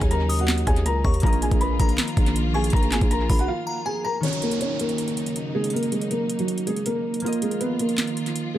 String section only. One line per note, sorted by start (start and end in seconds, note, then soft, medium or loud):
0.00 1.20 C#3 medium
0.00 1.20 F#3 medium
0.00 1.19 A#3 medium
0.00 1.20 D#4 medium
1.23 4.20 D#3 medium
1.23 4.20 F3 medium
1.23 4.20 A#3 medium
1.23 4.20 F4 medium
4.23 7.20 C#3 medium
4.23 7.20 F#3 medium
4.23 8.58 A#3 medium
4.23 7.20 D#4 medium
7.23 8.58 D#3 medium
7.23 8.58 F3 medium
7.23 8.58 F4 medium